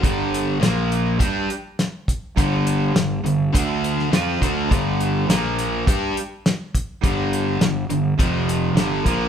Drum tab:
HH |x-x-x-x-x-x-x-x-|x-x-x-x-x-x-x-x-|x-x-x-x-x-x-x-x-|x-x-x-x-x-x-x-x-|
SD |----o-------o---|----o------oo---|----o-------o---|----o-------o---|
BD |o-------o-----o-|o-------o-----o-|o-------o-----o-|o-------o-----o-|